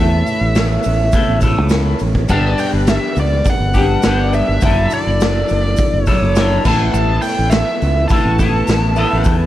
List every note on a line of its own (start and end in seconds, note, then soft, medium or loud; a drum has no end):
0.00 0.21 E2 loud
0.00 1.12 A3 medium
0.00 2.26 A3 medium
0.00 1.14 B3 loud
0.00 4.58 B3 medium
0.00 1.13 E4 medium
0.00 2.26 E4 medium
0.00 1.14 A4 loud
0.00 2.27 C#5 medium
0.00 1.38 E5 medium
0.26 open hi-hat medium
0.26 shaker medium
0.41 0.77 A1 medium
0.55 snare loud
0.55 open hi-hat medium
0.55 shaker loud
0.83 1.09 A1 medium
0.83 open hi-hat medium
0.83 shaker medium
1.12 1.41 A3 medium
1.12 1.41 B3 medium
1.12 1.42 E4 medium
1.12 kick loud
1.12 open hi-hat medium
1.12 shaker medium
1.16 1.42 A4 medium
1.28 1.58 A1 medium
1.41 2.00 E4 medium
1.41 1.99 A4 medium
1.41 kick medium
1.41 open hi-hat medium
1.41 shaker medium
1.45 2.01 A3 medium
1.45 2.00 B3 medium
1.58 1.93 C#2 medium
1.69 snare loud
1.69 open hi-hat medium
1.69 shaker loud
1.99 2.25 A1 medium
1.99 open hi-hat medium
1.99 shaker medium
2.15 kick medium
2.28 2.53 G1 loud
2.28 3.73 G3 medium
2.28 4.60 G3 medium
2.28 3.74 B3 loud
2.28 4.60 D4 medium
2.28 3.74 D4 loud
2.28 3.73 G4 medium
2.28 4.59 B4 medium
2.28 2.57 A5 loud
2.28 kick medium
2.28 crash medium
2.28 shaker loud
2.58 2.67 G5 medium
2.58 open hi-hat medium
2.58 shaker medium
2.73 2.97 G1 medium
2.87 3.16 E5 medium
2.87 snare loud
2.87 open hi-hat medium
2.87 shaker loud
3.16 3.40 C#2 medium
3.16 open hi-hat medium
3.16 shaker medium
3.20 3.48 D5 medium
3.44 kick medium
3.44 open hi-hat medium
3.44 shaker loud
3.50 4.31 F#5 medium
3.60 3.96 G1 medium
3.74 4.02 G3 medium
3.74 4.04 B3 medium
3.74 4.03 D4 medium
3.74 4.02 G4 medium
3.74 kick medium
3.74 open hi-hat medium
3.74 shaker medium
4.03 4.40 G1 medium
4.03 4.60 G3 medium
4.03 4.61 B3 medium
4.03 4.62 D4 medium
4.03 snare loud
4.03 open hi-hat medium
4.03 shaker loud
4.07 4.62 G4 medium
4.33 4.93 E5 loud
4.33 open hi-hat medium
4.33 shaker medium
4.49 4.60 G1 medium
4.61 4.86 F#1 loud
4.61 6.63 F#3 medium
4.61 6.06 F#3 medium
4.61 6.63 D4 medium
4.61 6.07 D4 medium
4.61 9.46 E4 medium
4.61 6.63 A4 medium
4.61 kick loud
4.61 open hi-hat medium
4.61 shaker loud
4.65 6.08 E4 medium
4.65 6.07 A4 medium
4.90 6.02 D5 medium
4.90 open hi-hat medium
4.90 shaker medium
5.07 5.42 F#1 medium
5.21 snare loud
5.21 open hi-hat medium
5.21 shaker loud
5.49 5.74 F#1 medium
5.49 open hi-hat medium
5.49 shaker medium
5.77 kick loud
5.77 open hi-hat medium
5.77 shaker loud
5.93 6.05 F#1 medium
6.02 6.62 C#5 medium
6.06 6.35 D4 medium
6.06 6.39 E4 medium
6.06 6.40 A4 medium
6.06 kick medium
6.06 open hi-hat medium
6.06 shaker medium
6.11 6.35 F#3 medium
6.22 6.57 F#1 medium
6.35 6.64 F#3 medium
6.35 6.64 D4 medium
6.35 6.67 E4 medium
6.35 snare loud
6.35 open hi-hat medium
6.35 shaker loud
6.40 6.67 A4 medium
6.65 6.89 A1 medium
6.65 8.09 A3 medium
6.65 9.46 A3 medium
6.65 9.46 B3 medium
6.65 8.10 B3 loud
6.65 8.12 E4 loud
6.65 8.13 A4 loud
6.65 9.46 B4 medium
6.65 kick loud
6.65 crash loud
6.65 shaker medium
6.94 7.18 A1 loud
6.94 7.21 A5 loud
6.94 shaker loud
7.22 7.52 G5 medium
7.22 open hi-hat medium
7.22 shaker medium
7.39 7.62 A1 medium
7.50 8.05 E5 medium
7.50 snare loud
7.50 open hi-hat medium
7.50 shaker loud
7.82 8.05 C#2 medium
7.82 open hi-hat medium
8.08 8.43 A3 medium
8.08 8.38 B3 medium
8.08 9.46 A5 loud
8.08 kick loud
8.08 open hi-hat medium
8.08 shaker medium
8.12 8.41 E4 medium
8.12 8.39 A4 medium
8.25 8.61 A1 loud
8.39 8.97 B3 medium
8.39 8.98 E4 medium
8.39 8.99 A4 medium
8.39 kick medium
8.39 open hi-hat medium
8.39 shaker medium
8.43 8.96 A3 medium
8.67 9.04 A1 medium
8.67 snare loud
8.67 open hi-hat medium
8.67 shaker medium
8.96 9.46 A3 loud
8.96 9.46 B3 medium
8.96 9.46 E4 loud
8.96 9.46 A4 loud
8.96 open hi-hat medium
8.96 shaker medium
9.13 9.24 A1 medium
9.24 9.46 E2 loud
9.24 kick loud
9.24 open hi-hat medium
9.24 shaker medium